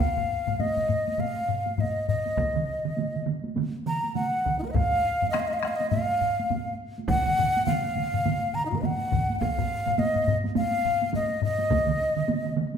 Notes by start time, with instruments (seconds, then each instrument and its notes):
0.00 flute F5, taiko
0.18 taiko low-mid
0.47 taiko low-mid, taiko high
0.59 flute D#5, taiko low-mid, taiko high
0.77 taiko low-mid
0.89 taiko low-mid, taiko high
1.08 taiko high
1.18 flute F5, taiko low-mid, taiko high
1.48 taiko low-mid
1.66 taiko high
1.78 flute D#5, taiko low-mid, taiko high
2.09 flute D#5, taiko low-mid
2.26 taiko high
2.37 taiko, taiko high
2.55 taiko mid
2.85 taiko mid
2.97 taiko mid, taiko high
3.16 taiko mid
3.26 taiko mid, taiko high
3.44 taiko high
3.56 taiko mid, taiko high
3.86 flute A#5, taiko mid
4.04 taiko high
4.15 flute F#5, taiko mid, taiko high
4.45 taiko, taiko mid
4.59 flute D#4 F4
4.63 flute A#4, taiko high
4.68 flute B4 D#5
4.72 flute F5, taiko, taiko low-mid, taiko high
5.22 taiko low-mid, taiko high
5.31 flute D#5, taiko rim, taiko high
5.39 flute F5
5.48 flute D#5
5.53 flute F5
5.60 flute D#5, taiko rim, taiko high
5.68 flute F5
5.76 flute D#5
5.81 taiko high
5.90 flute F5, taiko low-mid, taiko high
6.21 taiko low-mid
6.40 taiko high
6.50 taiko low-mid, taiko high
6.98 taiko high
7.08 flute F#5, taiko, taiko low-mid, taiko mid, taiko high
7.27 taiko low-mid, taiko mid
7.38 taiko low-mid, taiko mid
7.57 taiko high
7.66 flute F5, taiko low-mid, taiko mid, taiko high
7.96 taiko low-mid, taiko mid, taiko high
8.14 taiko low-mid, taiko mid
8.26 taiko low-mid, taiko mid, taiko high
8.54 flute A#5, taiko low-mid, taiko mid
8.65 flute D#4
8.70 flute F4 F#4, taiko low-mid, taiko mid, taiko high
8.75 flute A#4 B4
8.79 flute D#5, taiko low-mid
8.83 flute F#5, taiko mid, taiko high
9.12 taiko, taiko low-mid, taiko mid
9.30 taiko high
9.39 flute F5, taiko, taiko high
9.58 taiko low-mid
9.87 taiko low-mid, taiko high
9.99 flute D#5, taiko low-mid, taiko high
10.16 taiko low-mid
10.27 taiko low-mid, taiko high
10.44 taiko high
10.56 flute F5, taiko low-mid, taiko high
10.85 taiko low-mid
11.02 taiko high
11.13 flute D#5, taiko low-mid, taiko high
11.42 flute D#5, taiko low-mid
11.59 taiko high
11.71 taiko, taiko high
11.88 taiko mid
12.17 taiko mid
12.28 taiko mid, taiko high
12.46 taiko mid
12.56 taiko mid, taiko high
12.74 taiko high